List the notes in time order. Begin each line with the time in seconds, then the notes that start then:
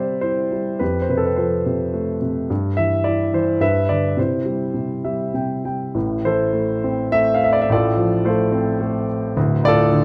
Already playing: C3 G3 C4 C5 D5 E5
0.21 E4 C5
0.52 G3
0.79 F2 G4 B4
1.02 C5
1.09 C3 B4
1.17 A4
1.26 B4
1.36 F3 A4 C5
1.66 C3
1.94 A3
2.22 C3
2.50 G2
2.77 E3 E5
3.04 E4 D5
3.34 E3 C5
3.60 G2 B4 E5
3.89 D3 D5
4.17 C3 E4 C5
4.46 G3
4.74 C3
5.04 G3 E5
5.34 C3 G5
5.65 G3 G5
5.95 A1 A2
6.25 E3 E4 A4 C5
6.53 A3
6.84 C4
7.12 A3 E5
7.34 F5
7.44 E5
7.53 D5
7.62 E5
7.69 A1 A2 A4 D5
7.73 F4
7.97 F3
8.25 A3 F4 A4 C5
8.52 C4
8.81 A3
9.36 D1 D2
9.64 A2 F4 D5
9.68 A4
9.91 D3